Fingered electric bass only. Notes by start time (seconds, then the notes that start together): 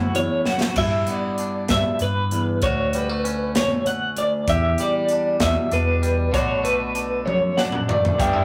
Already playing: F#2
0.76 G2
1.69 G2
2.01 G2
2.62 D2
4.48 E2
5.40 E2
5.72 E2
6.34 B1
8.20 G1